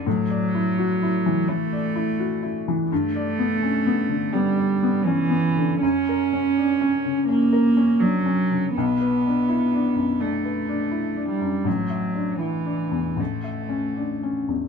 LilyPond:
<<
  \new Staff \with { instrumentName = "Felt piano" } { \time 4/4 \key b \minor \tempo 4 = 83 \tuplet 3/2 { a,8 d''8 e'8 fis'8 e'8 e8 e'8 d''8 e'8 fis'8 e'8 e8 } | \tuplet 3/2 { g,8 d''8 b8 cis'8 b8 d8 b8 d''8 b8 cis'8 b8 d8 } | \tuplet 3/2 { fis,8 ais'8 cis'8 d'8 cis'8 cis8 cis'8 ais'8 cis'8 d'8 cis'8 cis8 } | \tuplet 3/2 { b,,8 b'8 d'8 e'8 d'8 fis,8 d'8 b'8 d'8 e'8 d'8 fis,8 } |
\tuplet 3/2 { a,,8 e''8 d'8 e'8 d'8 e,8 a,,8 e''8 cis'8 d'8 cis'8 e,8 } | }
  \new Staff \with { instrumentName = "Cello" } { \clef bass \time 4/4 \key b \minor fis2 a4. r8 | a2 g4 e4 | cis'2 ais4 fis4 | b2 a4. g8 |
fis4 e4 a4. r8 | }
>>